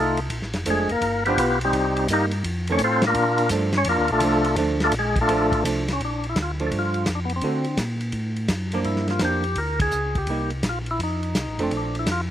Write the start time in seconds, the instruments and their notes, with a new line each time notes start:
Already playing: tonewheel organ C2
0.00 tonewheel organ A3 D#4 F4 A4
0.17 ride
0.30 tonewheel organ A#1, kick, ride
0.42 tonewheel organ A1, snare
0.53 tonewheel organ F1, snare, ride
0.65 tonewheel organ F1, hollow-body jazz guitar F3 A3 D4, kick, hi-hat pedal, ride
0.70 tonewheel organ G#3 G#4
0.89 tonewheel organ F1 A#3 A#4, ride
1.01 tonewheel organ G1, kick, ride
1.26 hollow-body jazz guitar F3 B3 D4, tonewheel organ B3 F4 G4 B4, ride
1.37 tonewheel organ B1, kick, hi-hat pedal, ride
1.61 tonewheel organ G3 C4 G4, ride
1.65 tonewheel organ D#4
1.72 tonewheel organ C2, kick, ride
1.97 ride
2.08 tonewheel organ G2, hollow-body jazz guitar G3 A#3 D#4, kick, hi-hat pedal, ride
2.13 tonewheel organ A#3 D#4 G4 A#4
2.31 ride
2.44 tonewheel organ F2, kick, ride
2.67 hollow-body jazz guitar D#3 A3 C4, ride
2.72 tonewheel organ C#4 C#5
2.78 tonewheel organ A2, kick, hi-hat pedal, ride
2.84 tonewheel organ C4 F4 A4 C5
3.02 snare, ride
3.07 tonewheel organ A#3 D4 F4 A#4
3.14 tonewheel organ A#2, kick, ride
3.38 ride
3.49 tonewheel organ G2, hollow-body jazz guitar F3 A3 D4, kick, hi-hat pedal, ride
3.73 snare, ride
3.77 tonewheel organ C#4 C#5
3.85 tonewheel organ F2, kick, ride
3.89 tonewheel organ A#3 D4 F4 A#4
3.98 tonewheel organ D2
4.08 tonewheel organ A#1, ride
4.12 tonewheel organ A3 D4 F4 A4
4.20 tonewheel organ C2, hollow-body jazz guitar F3 A3 D4, kick, hi-hat pedal, ride
4.44 ride
4.56 tonewheel organ D2, hollow-body jazz guitar F3 A3 D4, kick, ride
4.80 tonewheel organ F4 A4, snare, ride
4.85 tonewheel organ A3 D4
4.92 tonewheel organ A#1, kick, hi-hat pedal, ride
4.99 tonewheel organ G#3 G#4
5.16 kick, ride
5.21 tonewheel organ A3 D4 F4 A4
5.28 tonewheel organ A1, hollow-body jazz guitar F3 A3 D4, kick, ride
5.52 kick, ride
5.64 tonewheel organ C2, hollow-body jazz guitar F3 A3 D4, kick, hi-hat pedal, ride
5.88 snare, ride
5.93 tonewheel organ C#4
6.00 tonewheel organ A#1, kick, ride
6.05 tonewheel organ D4
6.24 ride
6.29 tonewheel organ E4
6.36 tonewheel organ D2, kick, snare, hi-hat pedal, ride
6.43 tonewheel organ F4
6.59 hollow-body jazz guitar F3 A3 D4, ride
6.67 tonewheel organ A4
6.71 tonewheel organ G2, kick, ride
6.79 tonewheel organ F4
6.94 ride
7.06 tonewheel organ F2, kick, snare, hi-hat pedal, ride
7.15 tonewheel organ D4
7.25 tonewheel organ B3
7.30 ride
7.36 tonewheel organ C4
7.41 tonewheel organ D3, hollow-body jazz guitar D3 A3 C4 F#4, kick, ride
7.64 ride
7.77 tonewheel organ A#2, kick, snare, hi-hat pedal, ride
8.01 ride
8.12 tonewheel organ A2, kick, ride
8.36 ride
8.48 tonewheel organ F#2, kick, snare, hi-hat pedal, ride
8.72 hollow-body jazz guitar F3 A#3 D4, tonewheel organ D4, ride
8.84 tonewheel organ G2 E4, kick, ride
8.96 snare
9.08 tonewheel organ F4, snare, ride
9.19 tonewheel organ F2, hollow-body jazz guitar F3 A#3 D4, kick, snare, hi-hat pedal, ride
9.25 tonewheel organ G4
9.44 ride
9.55 tonewheel organ D2 A#4, kick, ride
9.80 tonewheel organ G#4, kick, ride
9.91 tonewheel organ C#2, hi-hat pedal
10.15 tonewheel organ G4, kick, ride
10.27 tonewheel organ C2, hollow-body jazz guitar G3 A#3 D#4, kick, ride
10.50 ride
10.63 tonewheel organ A#1, kick, snare, hi-hat pedal, ride
10.69 tonewheel organ F4
10.86 ride
10.91 tonewheel organ E4
10.99 tonewheel organ F2, kick, ride
11.03 tonewheel organ D#4
11.23 ride
11.35 tonewheel organ C2, kick, snare, hi-hat pedal, ride
11.47 tonewheel organ A1
11.58 tonewheel organ F1, hollow-body jazz guitar F3 A3 D4, ride
11.63 tonewheel organ C4
11.71 tonewheel organ A#1, kick, ride
11.77 tonewheel organ D4
11.95 ride
11.99 tonewheel organ E4
12.06 tonewheel organ F2, kick, snare, hi-hat pedal, ride
12.12 tonewheel organ F4